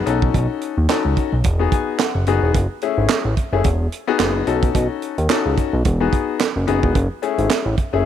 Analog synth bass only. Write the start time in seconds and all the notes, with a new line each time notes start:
0.07 B1
0.34 B1
0.77 D#2
1.05 C#2
1.33 B1
1.45 E1
2.15 F#1
2.27 F#1
2.42 E1
2.54 F#1
2.98 G#1
3.25 A1
3.53 F#1
3.65 E1
4.20 F#1
4.47 B1
4.75 B1
5.18 D#2
5.46 C#2
5.73 B1
5.85 E1
6.56 F#1
6.68 F#1
6.83 E1
6.95 F#1
7.38 G#1
7.66 A1
7.93 F#1